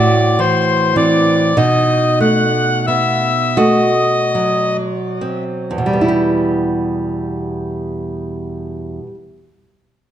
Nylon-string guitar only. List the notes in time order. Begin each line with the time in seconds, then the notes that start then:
Already playing: A2 F#4
0.39 E3
0.96 E3 C4
1.57 B2 D#4
2.20 A3
2.88 B3
3.57 A3 F#4
4.35 F#3
5.21 C4
5.71 E2
5.78 B2
5.86 G3
5.93 B3
6.01 E4
6.08 G4